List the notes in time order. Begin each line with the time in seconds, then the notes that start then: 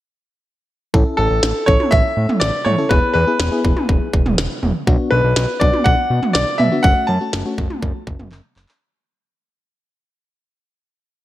0.94 A1 C#4 E4 A4, kick
1.17 A1 A4
1.31 A1
1.43 A1, snare
1.66 A1 C#4 E4 A4 C#5, kick
1.80 mid tom
1.91 A1 E5, kick
2.17 A2
2.29 mid tom
2.40 A1 D5, snare
2.65 A2 C#5, mid tom
2.78 C#4 E4 A4
2.89 E1 B3 E4 G#4 B4, kick
3.14 E2 B4
3.27 B3 E4 G#4
3.40 E1, snare
3.52 B3 E4 G#4
3.65 E1, kick
3.77 mid tom
3.89 E1, kick
4.13 E1, kick
4.26 E1, mid tom
4.38 E1, snare
4.63 E1, mid tom
4.87 B1 B3 D4 F#4, kick
5.11 B1 B4
5.24 B1
5.36 B1, snare
5.60 B1 B3 D4 F#4 D5, kick
5.73 mid tom
5.84 B1 F#5, kick
6.10 B2
6.23 mid tom
6.33 B1 D5, snare
6.58 B2 E5, mid tom
6.72 B3 D4 F#4
6.83 F#1 A3 C#4 F#4 F#5, kick
7.07 F#2 A5
7.21 A3 C#4 F#4
7.33 F#1, snare
7.46 A3 C#4 F#4
7.58 F#1, kick
7.70 mid tom
7.82 F#1, kick
8.07 F#1, kick
8.19 F#1, mid tom
8.32 F#1, clap
8.56 F#1, clap
8.69 clap